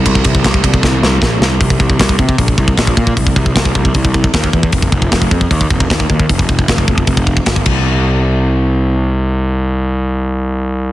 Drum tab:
CC |----------------|----------------|----------------|----------------|
RD |x-x-x-x---------|----------------|----------------|----------------|
HH |----------------|o---o---o---o---|o---o---o---o---|o---o---o---o---|
SD |----o---o-o-o-o-|----o-------o---|----o-------o---|----o-------o---|
BD |ooooooooo---o---|oooooooooooooooo|oooooooooooooooo|oooooooooooooooo|

CC |--------------x-|----------------|----------------|
RD |----------------|----------------|----------------|
HH |o---o---o---o---|----------------|----------------|
SD |----o-------o---|----------------|----------------|
BD |ooooooooooooooo-|----------------|----------------|